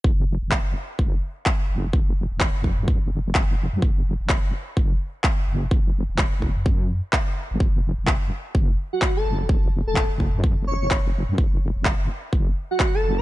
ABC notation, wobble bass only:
X:1
M:4/4
L:1/16
Q:"Swing 16ths" 1/4=127
K:F#m
V:1 name="Wobble bass" clef=bass
F,,,3 F,,,3 z2 F,,,2 z4 F,,,2 | F,,,3 E,,,2 F,,,2 F,,2 F,,, F,,,2 F,,,3 F,, | F,,,3 F,,,3 z2 F,,,2 z4 F,,,2 | F,,,3 E,,,2 F,,,2 F,,4 z4 G,,, |
F,,,3 F,,,3 z2 F,,,2 z4 F,,,2 | F,,,3 E,,,2 F,,,2 F,,2 F,,, F,,,2 F,,,3 F,, | F,,,3 F,,,3 z2 F,,,2 z4 F,,,2 |]